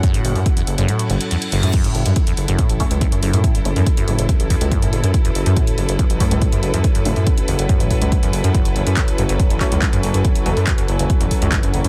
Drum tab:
CC |----------------|x---------------|----------------|----------------|
HH |xxooxxoxxxoxxxox|xxoxxxoxxxoxxxox|xxooxxoxxxoxxxox|xxoxxxoxxxoxxxox|
CP |----------------|----------------|----------------|----------------|
BD |o---o-----------|o---o---o-o-o---|o---o---o-o-o---|o---o---o-o-o---|

CC |----------------|----------------|----------------|
HH |xxooxxoxxxoxxxox|xxoxxxoxxxoxxxox|xxooxxoxxxoxxxox|
CP |----------------|----x-----x-x---|----x-------x---|
BD |o---o---o-o-o---|o---o---o-o-o---|o---o---o-o-o---|